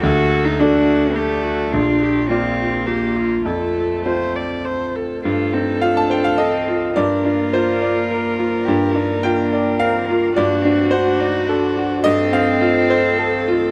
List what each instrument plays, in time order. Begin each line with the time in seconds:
0.01 grand piano D2, ambient pad A3 A4 D5, cello F#4, viola A4
0.45 cello D#4
0.59 grand piano A3 D4 D5, cello D4, viola F#4
1.15 cello A3, viola G4
1.44 viola F#4
1.72 grand piano A#1, ambient pad A#3 F4, cello D4, viola F4
2.02 viola G4
2.29 grand piano A#3 F4 D5, cello C4, viola F4
2.86 cello A#3, viola G4
3.16 viola F4
3.45 grand piano F2, cello A3, ambient pad A3 C5, viola A4
4.05 grand piano C4 F4 C5, viola C5
4.36 viola D5
4.65 viola C5
4.95 viola A4
5.23 grand piano G2, ambient pad A3 F4 C5, cello F4, viola A4
5.53 grand piano C4, cello D#4
5.81 cello D4, grand piano F4 F5
5.97 grand piano A5
6.10 grand piano C5 G5
6.24 grand piano F5
6.38 cello C4, grand piano A4 D#5
6.68 grand piano F4
6.95 grand piano G2 D5, ambient pad A#3 D5, cello D4, viola A#4
7.24 grand piano D4, cello F4
7.53 grand piano F4 C5
7.82 grand piano D5
8.11 grand piano A#4
8.39 grand piano F4
8.66 grand piano G2, cello G4
8.94 grand piano D4, cello D#4
9.23 cello D4, grand piano F4 G5
9.53 grand piano D5
9.79 cello C4, grand piano A#4 F5
10.08 cello A#3, grand piano F4
10.35 grand piano G2 D5, ambient pad A3 F#4, cello D4, viola F#4
10.62 cello C4, grand piano D4
10.90 cello D4, grand piano F#4 C5
11.20 cello D#4, grand piano D5
11.47 cello D4, grand piano A4
11.77 grand piano F#4
12.04 grand piano G2 D#5, cello C4, ambient pad F4 C5, viola A4
12.33 grand piano C4 F5
12.61 grand piano F4
12.90 grand piano C5
13.19 grand piano A4
13.48 grand piano F4